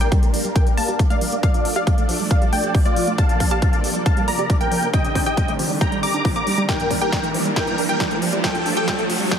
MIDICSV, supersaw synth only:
0, 0, Header, 1, 2, 480
1, 0, Start_track
1, 0, Key_signature, -2, "minor"
1, 0, Tempo, 437956
1, 1569, Time_signature, 4, 2, 24, 8
1, 10290, End_track
2, 0, Start_track
2, 0, Title_t, "Supersaw synth"
2, 0, Program_c, 0, 81
2, 10, Note_on_c, 0, 70, 75
2, 10, Note_on_c, 0, 79, 92
2, 303, Note_off_c, 0, 70, 0
2, 303, Note_off_c, 0, 79, 0
2, 610, Note_on_c, 0, 79, 89
2, 611, Note_on_c, 0, 70, 77
2, 805, Note_off_c, 0, 70, 0
2, 805, Note_off_c, 0, 79, 0
2, 851, Note_on_c, 0, 77, 76
2, 851, Note_on_c, 0, 81, 97
2, 1143, Note_off_c, 0, 77, 0
2, 1143, Note_off_c, 0, 81, 0
2, 1211, Note_on_c, 0, 74, 77
2, 1211, Note_on_c, 0, 77, 97
2, 1503, Note_off_c, 0, 74, 0
2, 1503, Note_off_c, 0, 77, 0
2, 1571, Note_on_c, 0, 74, 80
2, 1571, Note_on_c, 0, 77, 102
2, 1863, Note_off_c, 0, 74, 0
2, 1863, Note_off_c, 0, 77, 0
2, 1930, Note_on_c, 0, 74, 76
2, 1930, Note_on_c, 0, 77, 97
2, 2223, Note_off_c, 0, 74, 0
2, 2223, Note_off_c, 0, 77, 0
2, 2529, Note_on_c, 0, 74, 73
2, 2529, Note_on_c, 0, 77, 90
2, 2725, Note_off_c, 0, 74, 0
2, 2725, Note_off_c, 0, 77, 0
2, 2769, Note_on_c, 0, 74, 76
2, 2769, Note_on_c, 0, 79, 94
2, 3062, Note_off_c, 0, 74, 0
2, 3062, Note_off_c, 0, 79, 0
2, 3130, Note_on_c, 0, 65, 78
2, 3130, Note_on_c, 0, 74, 100
2, 3423, Note_off_c, 0, 65, 0
2, 3423, Note_off_c, 0, 74, 0
2, 3489, Note_on_c, 0, 77, 83
2, 3489, Note_on_c, 0, 81, 108
2, 3782, Note_off_c, 0, 81, 0
2, 3783, Note_off_c, 0, 77, 0
2, 3850, Note_on_c, 0, 77, 75
2, 3850, Note_on_c, 0, 81, 90
2, 4143, Note_off_c, 0, 77, 0
2, 4143, Note_off_c, 0, 81, 0
2, 4449, Note_on_c, 0, 77, 76
2, 4449, Note_on_c, 0, 81, 89
2, 4645, Note_off_c, 0, 77, 0
2, 4645, Note_off_c, 0, 81, 0
2, 4689, Note_on_c, 0, 74, 80
2, 4689, Note_on_c, 0, 82, 94
2, 4982, Note_off_c, 0, 74, 0
2, 4982, Note_off_c, 0, 82, 0
2, 5049, Note_on_c, 0, 70, 81
2, 5049, Note_on_c, 0, 79, 96
2, 5342, Note_off_c, 0, 70, 0
2, 5342, Note_off_c, 0, 79, 0
2, 5409, Note_on_c, 0, 75, 84
2, 5409, Note_on_c, 0, 79, 102
2, 5702, Note_off_c, 0, 75, 0
2, 5702, Note_off_c, 0, 79, 0
2, 5769, Note_on_c, 0, 75, 77
2, 5770, Note_on_c, 0, 79, 96
2, 6062, Note_off_c, 0, 75, 0
2, 6063, Note_off_c, 0, 79, 0
2, 6369, Note_on_c, 0, 79, 80
2, 6369, Note_on_c, 0, 82, 94
2, 6565, Note_off_c, 0, 79, 0
2, 6565, Note_off_c, 0, 82, 0
2, 6610, Note_on_c, 0, 82, 80
2, 6610, Note_on_c, 0, 86, 92
2, 6903, Note_off_c, 0, 82, 0
2, 6903, Note_off_c, 0, 86, 0
2, 6970, Note_on_c, 0, 82, 74
2, 6970, Note_on_c, 0, 86, 102
2, 7263, Note_off_c, 0, 82, 0
2, 7263, Note_off_c, 0, 86, 0
2, 7329, Note_on_c, 0, 79, 94
2, 7330, Note_on_c, 0, 70, 71
2, 7622, Note_off_c, 0, 70, 0
2, 7622, Note_off_c, 0, 79, 0
2, 7689, Note_on_c, 0, 70, 74
2, 7689, Note_on_c, 0, 79, 83
2, 7982, Note_off_c, 0, 70, 0
2, 7982, Note_off_c, 0, 79, 0
2, 8289, Note_on_c, 0, 70, 74
2, 8289, Note_on_c, 0, 79, 95
2, 8582, Note_off_c, 0, 70, 0
2, 8582, Note_off_c, 0, 79, 0
2, 8650, Note_on_c, 0, 70, 74
2, 8650, Note_on_c, 0, 79, 90
2, 8942, Note_off_c, 0, 70, 0
2, 8943, Note_off_c, 0, 79, 0
2, 9249, Note_on_c, 0, 69, 77
2, 9249, Note_on_c, 0, 79, 101
2, 9542, Note_off_c, 0, 69, 0
2, 9542, Note_off_c, 0, 79, 0
2, 9610, Note_on_c, 0, 69, 75
2, 9610, Note_on_c, 0, 79, 95
2, 9903, Note_off_c, 0, 69, 0
2, 9903, Note_off_c, 0, 79, 0
2, 10210, Note_on_c, 0, 69, 73
2, 10210, Note_on_c, 0, 79, 97
2, 10290, Note_off_c, 0, 69, 0
2, 10290, Note_off_c, 0, 79, 0
2, 10290, End_track
0, 0, End_of_file